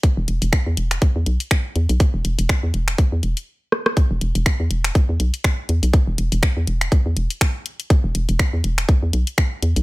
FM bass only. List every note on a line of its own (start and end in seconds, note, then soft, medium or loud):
0.17 0.26 E1 loud
0.28 0.39 E1 medium
0.42 0.51 E1 medium
0.66 0.75 E2 medium
0.77 0.98 E1 medium
1.16 1.25 E2 medium
1.26 1.38 B1 medium
1.76 1.87 E2 medium
1.89 1.98 B1 medium
2.14 2.23 E1 medium
2.25 2.36 E1 medium
2.38 2.47 E1 medium
2.63 2.72 E2 medium
2.74 2.95 E1 medium
3.12 3.21 E2 medium
3.23 3.34 E1 medium
4.11 4.20 E1 medium
4.21 4.33 E1 medium
4.35 4.44 E1 medium
4.60 4.69 E2 medium
4.71 4.91 E1 medium
5.09 5.18 E2 medium
5.20 5.31 B1 medium
5.69 5.80 E2 medium
5.83 5.92 B1 medium
6.07 6.16 E1 loud
6.18 6.30 E1 medium
6.32 6.41 E1 medium
6.57 6.65 E2 medium
6.67 6.88 E1 medium
7.06 7.15 E2 medium
7.16 7.28 E1 medium
8.04 8.13 E1 medium
8.15 8.26 E1 medium
8.29 8.38 E1 medium
8.53 8.62 E2 medium
8.64 8.85 E1 medium
9.03 9.11 E2 medium
9.13 9.25 B1 medium
9.62 9.74 E2 medium
9.76 9.83 B1 medium